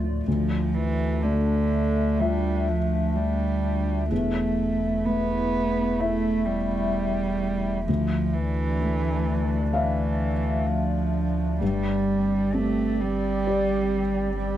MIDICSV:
0, 0, Header, 1, 5, 480
1, 0, Start_track
1, 0, Key_signature, -1, "minor"
1, 0, Tempo, 960000
1, 132, Time_signature, 4, 2, 24, 8
1, 2529, Tempo, 936037
1, 5889, Tempo, 921659
1, 7431, End_track
2, 0, Start_track
2, 0, Title_t, "Ambient pad"
2, 0, Program_c, 0, 92
2, 0, Note_on_c, 0, 57, 44
2, 0, Note_on_c, 0, 65, 49
2, 0, Note_on_c, 0, 74, 51
2, 110, Note_off_c, 0, 65, 0
2, 111, Note_off_c, 0, 57, 0
2, 131, Note_off_c, 0, 74, 0
2, 134, Note_on_c, 0, 57, 60
2, 134, Note_on_c, 0, 62, 73
2, 135, Note_on_c, 0, 76, 63
2, 2035, Note_off_c, 0, 57, 0
2, 2035, Note_off_c, 0, 62, 0
2, 2035, Note_off_c, 0, 76, 0
2, 2054, Note_on_c, 0, 57, 67
2, 2054, Note_on_c, 0, 76, 63
2, 2055, Note_on_c, 0, 64, 64
2, 3957, Note_off_c, 0, 57, 0
2, 3957, Note_off_c, 0, 76, 0
2, 3978, Note_off_c, 0, 64, 0
2, 3978, Note_on_c, 0, 57, 65
2, 3978, Note_on_c, 0, 62, 60
2, 3980, Note_on_c, 0, 74, 62
2, 5869, Note_off_c, 0, 57, 0
2, 5870, Note_off_c, 0, 74, 0
2, 5881, Note_on_c, 0, 67, 60
2, 5881, Note_on_c, 0, 74, 62
2, 5882, Note_on_c, 0, 60, 64
2, 5890, Note_off_c, 0, 62, 0
2, 7431, Note_off_c, 0, 60, 0
2, 7431, Note_off_c, 0, 67, 0
2, 7431, Note_off_c, 0, 74, 0
2, 7431, End_track
3, 0, Start_track
3, 0, Title_t, "Felt piano"
3, 0, Program_c, 1, 0
3, 0, Control_c, 1, 64, 127
3, 0, Note_on_c, 1, 38, 27
3, 0, Note_on_c, 1, 45, 26
3, 0, Note_on_c, 1, 57, 31
3, 0, Note_on_c, 1, 65, 29
3, 0, Note_on_c, 1, 74, 28
3, 18, Note_off_c, 1, 45, 0
3, 18, Note_on_c, 1, 45, 25
3, 84, Note_off_c, 1, 57, 0
3, 109, Note_off_c, 1, 38, 0
3, 136, Note_off_c, 1, 45, 0
3, 139, Note_on_c, 1, 38, 59
3, 141, Control_c, 1, 64, 0
3, 142, Note_off_c, 1, 74, 0
3, 144, Note_off_c, 1, 65, 0
3, 233, Control_c, 1, 64, 127
3, 617, Note_on_c, 1, 57, 44
3, 1099, Note_on_c, 1, 65, 45
3, 1102, Note_on_c, 1, 76, 50
3, 1383, Note_off_c, 1, 57, 0
3, 2037, Note_off_c, 1, 38, 0
3, 2037, Note_off_c, 1, 65, 0
3, 2038, Note_off_c, 1, 76, 0
3, 2059, Note_on_c, 1, 40, 53
3, 2062, Control_c, 1, 64, 0
3, 2145, Control_c, 1, 64, 127
3, 2531, Note_on_c, 1, 57, 45
3, 3013, Note_on_c, 1, 64, 38
3, 3013, Note_on_c, 1, 76, 46
3, 3301, Note_off_c, 1, 57, 0
3, 3957, Note_off_c, 1, 76, 0
3, 3958, Note_off_c, 1, 64, 0
3, 3959, Note_off_c, 1, 40, 0
3, 3980, Note_on_c, 1, 38, 53
3, 3986, Control_c, 1, 64, 0
3, 4063, Control_c, 1, 64, 127
3, 4457, Note_on_c, 1, 57, 42
3, 4928, Note_on_c, 1, 77, 49
3, 4931, Note_on_c, 1, 76, 49
3, 5218, Note_off_c, 1, 57, 0
3, 5867, Note_off_c, 1, 77, 0
3, 5869, Note_off_c, 1, 76, 0
3, 5870, Note_off_c, 1, 38, 0
3, 5891, Note_on_c, 1, 43, 62
3, 5899, Control_c, 1, 64, 0
3, 5990, Control_c, 1, 64, 127
3, 6372, Note_on_c, 1, 60, 46
3, 6857, Note_on_c, 1, 67, 45
3, 6858, Note_on_c, 1, 74, 49
3, 7138, Note_off_c, 1, 60, 0
3, 7431, Note_off_c, 1, 43, 0
3, 7431, Note_off_c, 1, 67, 0
3, 7431, Note_off_c, 1, 74, 0
3, 7431, End_track
4, 0, Start_track
4, 0, Title_t, "Cello"
4, 0, Program_c, 2, 42
4, 138, Note_on_c, 2, 53, 58
4, 373, Note_on_c, 2, 52, 68
4, 381, Note_off_c, 2, 53, 0
4, 613, Note_on_c, 2, 50, 59
4, 620, Note_off_c, 2, 52, 0
4, 1094, Note_on_c, 2, 55, 66
4, 1102, Note_off_c, 2, 50, 0
4, 1341, Note_on_c, 2, 53, 58
4, 1349, Note_off_c, 2, 55, 0
4, 1579, Note_on_c, 2, 55, 59
4, 1586, Note_off_c, 2, 53, 0
4, 2048, Note_off_c, 2, 55, 0
4, 2051, Note_on_c, 2, 57, 53
4, 2529, Note_on_c, 2, 59, 57
4, 2536, Note_off_c, 2, 57, 0
4, 3012, Note_on_c, 2, 57, 61
4, 3020, Note_off_c, 2, 59, 0
4, 3244, Note_on_c, 2, 55, 59
4, 3252, Note_off_c, 2, 57, 0
4, 3962, Note_off_c, 2, 55, 0
4, 3965, Note_on_c, 2, 53, 61
4, 4210, Note_on_c, 2, 52, 73
4, 4218, Note_off_c, 2, 53, 0
4, 4920, Note_off_c, 2, 52, 0
4, 4923, Note_on_c, 2, 52, 61
4, 5405, Note_on_c, 2, 53, 57
4, 5412, Note_off_c, 2, 52, 0
4, 5887, Note_off_c, 2, 53, 0
4, 5893, Note_on_c, 2, 55, 61
4, 6374, Note_on_c, 2, 57, 64
4, 6382, Note_off_c, 2, 55, 0
4, 6616, Note_on_c, 2, 55, 73
4, 6624, Note_off_c, 2, 57, 0
4, 7326, Note_off_c, 2, 55, 0
4, 7329, Note_on_c, 2, 55, 53
4, 7431, Note_off_c, 2, 55, 0
4, 7431, End_track
5, 0, Start_track
5, 0, Title_t, "Sub bass"
5, 0, Program_c, 3, 38
5, 0, Note_on_c, 3, 38, 55
5, 111, Note_off_c, 3, 38, 0
5, 136, Note_on_c, 3, 38, 81
5, 2057, Note_on_c, 3, 28, 70
5, 2064, Note_off_c, 3, 38, 0
5, 3978, Note_on_c, 3, 38, 64
5, 3985, Note_off_c, 3, 28, 0
5, 5891, Note_on_c, 3, 31, 67
5, 5898, Note_off_c, 3, 38, 0
5, 7431, Note_off_c, 3, 31, 0
5, 7431, End_track
0, 0, End_of_file